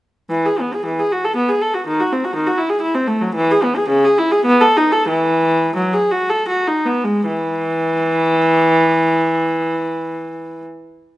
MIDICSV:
0, 0, Header, 1, 2, 480
1, 0, Start_track
1, 0, Key_signature, 4, "major"
1, 0, Tempo, 555042
1, 270, Time_signature, 3, 2, 24, 8
1, 737, Tempo, 492207
1, 2657, Tempo, 537634
1, 4097, Tempo, 634249
1, 4577, Tempo, 704225
1, 5537, Tempo, 788436
1, 6017, Tempo, 757576
1, 8494, End_track
2, 0, Start_track
2, 0, Title_t, "Viola"
2, 0, Program_c, 0, 41
2, 260, Note_on_c, 0, 52, 65
2, 385, Note_off_c, 0, 52, 0
2, 396, Note_on_c, 0, 68, 52
2, 512, Note_off_c, 0, 68, 0
2, 523, Note_on_c, 0, 59, 47
2, 631, Note_off_c, 0, 59, 0
2, 640, Note_on_c, 0, 68, 50
2, 742, Note_on_c, 0, 52, 51
2, 745, Note_off_c, 0, 68, 0
2, 860, Note_off_c, 0, 52, 0
2, 877, Note_on_c, 0, 68, 53
2, 991, Note_off_c, 0, 68, 0
2, 997, Note_on_c, 0, 66, 50
2, 1112, Note_off_c, 0, 66, 0
2, 1122, Note_on_c, 0, 69, 54
2, 1234, Note_on_c, 0, 59, 55
2, 1236, Note_off_c, 0, 69, 0
2, 1351, Note_off_c, 0, 59, 0
2, 1357, Note_on_c, 0, 68, 50
2, 1475, Note_off_c, 0, 68, 0
2, 1481, Note_on_c, 0, 69, 55
2, 1598, Note_off_c, 0, 69, 0
2, 1603, Note_on_c, 0, 66, 52
2, 1719, Note_off_c, 0, 66, 0
2, 1731, Note_on_c, 0, 51, 68
2, 1841, Note_off_c, 0, 51, 0
2, 1858, Note_on_c, 0, 66, 54
2, 1966, Note_off_c, 0, 66, 0
2, 1979, Note_on_c, 0, 60, 49
2, 2086, Note_off_c, 0, 60, 0
2, 2094, Note_on_c, 0, 66, 55
2, 2200, Note_on_c, 0, 51, 58
2, 2202, Note_off_c, 0, 66, 0
2, 2309, Note_on_c, 0, 66, 57
2, 2310, Note_off_c, 0, 51, 0
2, 2421, Note_on_c, 0, 64, 59
2, 2424, Note_off_c, 0, 66, 0
2, 2534, Note_on_c, 0, 68, 62
2, 2538, Note_off_c, 0, 64, 0
2, 2653, Note_on_c, 0, 64, 66
2, 2654, Note_off_c, 0, 68, 0
2, 2762, Note_off_c, 0, 64, 0
2, 2772, Note_on_c, 0, 60, 60
2, 2881, Note_on_c, 0, 57, 61
2, 2884, Note_off_c, 0, 60, 0
2, 3000, Note_off_c, 0, 57, 0
2, 3006, Note_on_c, 0, 54, 61
2, 3126, Note_off_c, 0, 54, 0
2, 3129, Note_on_c, 0, 52, 83
2, 3247, Note_off_c, 0, 52, 0
2, 3270, Note_on_c, 0, 68, 72
2, 3377, Note_off_c, 0, 68, 0
2, 3385, Note_on_c, 0, 59, 66
2, 3493, Note_off_c, 0, 59, 0
2, 3504, Note_on_c, 0, 68, 71
2, 3611, Note_on_c, 0, 49, 84
2, 3612, Note_off_c, 0, 68, 0
2, 3723, Note_off_c, 0, 49, 0
2, 3752, Note_on_c, 0, 68, 72
2, 3858, Note_off_c, 0, 68, 0
2, 3873, Note_on_c, 0, 64, 69
2, 3983, Note_off_c, 0, 64, 0
2, 3994, Note_on_c, 0, 68, 70
2, 4108, Note_off_c, 0, 68, 0
2, 4111, Note_on_c, 0, 59, 84
2, 4216, Note_off_c, 0, 59, 0
2, 4229, Note_on_c, 0, 69, 73
2, 4338, Note_off_c, 0, 69, 0
2, 4350, Note_on_c, 0, 63, 66
2, 4461, Note_off_c, 0, 63, 0
2, 4466, Note_on_c, 0, 69, 71
2, 4583, Note_off_c, 0, 69, 0
2, 4589, Note_on_c, 0, 52, 74
2, 5038, Note_off_c, 0, 52, 0
2, 5048, Note_on_c, 0, 54, 65
2, 5163, Note_off_c, 0, 54, 0
2, 5166, Note_on_c, 0, 68, 59
2, 5287, Note_off_c, 0, 68, 0
2, 5290, Note_on_c, 0, 66, 62
2, 5412, Note_off_c, 0, 66, 0
2, 5415, Note_on_c, 0, 69, 61
2, 5539, Note_off_c, 0, 69, 0
2, 5541, Note_on_c, 0, 66, 64
2, 5653, Note_off_c, 0, 66, 0
2, 5659, Note_on_c, 0, 63, 57
2, 5770, Note_on_c, 0, 59, 58
2, 5778, Note_off_c, 0, 63, 0
2, 5885, Note_on_c, 0, 56, 55
2, 5895, Note_off_c, 0, 59, 0
2, 6010, Note_off_c, 0, 56, 0
2, 6016, Note_on_c, 0, 52, 81
2, 8152, Note_off_c, 0, 52, 0
2, 8494, End_track
0, 0, End_of_file